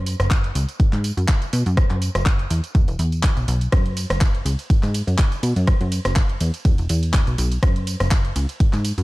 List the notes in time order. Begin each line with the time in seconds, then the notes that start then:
Already playing: F#2
0.06 open hi-hat, tambourine
0.20 F#1, cross-stick, closed hi-hat, tambourine
0.31 kick, clap, closed hi-hat, tambourine
0.44 closed hi-hat
0.55 C#2, open hi-hat, tambourine
0.69 closed hi-hat, tambourine
0.80 G#2, kick, closed hi-hat, tambourine
0.93 G#2, clap, closed hi-hat, tambourine
1.04 open hi-hat, tambourine
1.17 F#2, closed hi-hat, tambourine
1.28 kick, clap, closed hi-hat, tambourine
1.42 closed hi-hat, tambourine
1.53 B2, open hi-hat, tambourine
1.66 F#2, closed hi-hat, tambourine
1.77 kick, cross-stick, closed hi-hat, tambourine
1.90 F#2, clap, closed hi-hat
2.02 open hi-hat, tambourine
2.15 F#1, cross-stick, closed hi-hat, tambourine
2.26 kick, clap, closed hi-hat, tambourine
2.39 closed hi-hat
2.51 E2, open hi-hat, tambourine
2.64 closed hi-hat, tambourine
2.75 E2, kick, closed hi-hat, tambourine
2.88 E1, closed hi-hat, tambourine
2.99 E2, open hi-hat, tambourine
3.12 closed hi-hat, tambourine
3.23 kick, clap, closed hi-hat, tambourine
3.37 B1, closed hi-hat, tambourine
3.48 B1, open hi-hat, tambourine
3.61 closed hi-hat, tambourine
3.72 F#2, kick, cross-stick, closed hi-hat, ride, tambourine
3.86 closed hi-hat
3.97 open hi-hat, ride, tambourine
4.10 F#1, cross-stick, closed hi-hat, tambourine
4.21 kick, clap, closed hi-hat, ride, tambourine
4.35 closed hi-hat
4.45 C#2, open hi-hat, ride, tambourine
4.59 closed hi-hat, tambourine
4.70 G#2, kick, closed hi-hat, ride, tambourine
4.83 G#2, clap, closed hi-hat, tambourine
4.94 open hi-hat, ride, tambourine
5.07 F#2, closed hi-hat, tambourine
5.18 kick, clap, closed hi-hat, ride, tambourine
5.32 closed hi-hat, tambourine
5.43 B2, open hi-hat, ride, tambourine
5.56 F#2, closed hi-hat, tambourine
5.67 kick, cross-stick, closed hi-hat, ride, tambourine
5.81 F#2, closed hi-hat
5.92 open hi-hat, ride, tambourine
6.05 F#1, cross-stick, closed hi-hat, tambourine
6.16 kick, clap, closed hi-hat, ride, tambourine
6.29 closed hi-hat
6.41 E2, open hi-hat, ride, tambourine
6.54 closed hi-hat, tambourine
6.65 E2, kick, closed hi-hat, ride, tambourine
6.78 E1, closed hi-hat, tambourine
6.89 E2, open hi-hat, ride, tambourine
7.03 closed hi-hat, tambourine
7.14 kick, clap, closed hi-hat, ride, tambourine
7.27 B1, closed hi-hat, tambourine
7.38 B1, open hi-hat, ride, tambourine
7.52 closed hi-hat, tambourine
7.63 F#2, kick, cross-stick, closed hi-hat, ride, tambourine
7.76 closed hi-hat
7.87 open hi-hat, ride, tambourine
8.00 F#1, cross-stick, closed hi-hat, tambourine
8.11 kick, clap, closed hi-hat, ride, tambourine
8.25 closed hi-hat
8.36 C#2, open hi-hat, ride, tambourine
8.49 closed hi-hat, tambourine
8.60 G#2, kick, closed hi-hat, ride, tambourine
8.73 G#2, clap, closed hi-hat, tambourine
8.85 open hi-hat, ride, tambourine
8.98 F#2, closed hi-hat, tambourine